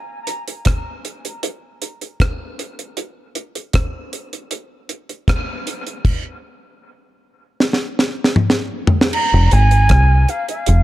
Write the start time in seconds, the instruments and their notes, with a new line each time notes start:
0.27 closed hi-hat
0.48 closed hi-hat
0.65 kick, cross-stick, closed hi-hat
1.05 closed hi-hat
1.25 closed hi-hat
1.43 closed hi-hat
1.82 closed hi-hat
2.01 closed hi-hat
2.20 kick, cross-stick, closed hi-hat
2.59 closed hi-hat
2.79 closed hi-hat
2.97 closed hi-hat
3.35 closed hi-hat
3.55 closed hi-hat
3.73 kick, cross-stick, closed hi-hat
4.13 closed hi-hat
4.33 closed hi-hat
4.51 closed hi-hat
4.89 closed hi-hat
5.09 closed hi-hat
5.28 kick, cross-stick, closed hi-hat
5.67 closed hi-hat
5.87 closed hi-hat
6.05 kick, crash
7.60 snare
7.73 snare
7.99 snare
8.24 snare
8.36 mid tom
8.50 snare
8.87 floor tom
9.01 snare
9.13 flute A#5, crash
9.34 fingered electric bass F1
9.51 fingered electric bass G#1, flute G#5, closed hi-hat
9.71 closed hi-hat
9.89 fingered electric bass C2, kick, cross-stick, closed hi-hat
10.29 flute F5, closed hi-hat
10.49 flute F5, closed hi-hat
10.66 fingered electric bass F1, closed hi-hat